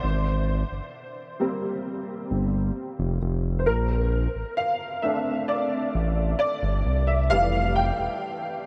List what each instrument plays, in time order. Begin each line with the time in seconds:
Already playing: grand piano C5
0.03 analog synth bass G#1
0.72 analog synth bass G1
1.40 grand piano G3 A#3 C4
2.31 analog synth bass G1
2.99 analog synth bass F1
3.22 analog synth bass F1
3.59 grand piano C5
3.66 analog synth bass A#1, grand piano A#4
4.35 analog synth bass A1
4.57 grand piano F5
5.02 grand piano A3 C4 D4 E5
5.48 grand piano D5
5.95 analog synth bass A1
6.39 grand piano D5
6.63 analog synth bass G1
6.85 analog synth bass C2
7.07 grand piano E5
7.30 analog synth bass F1, grand piano E3 G3 A3 F5
7.75 grand piano G5
7.99 analog synth bass E1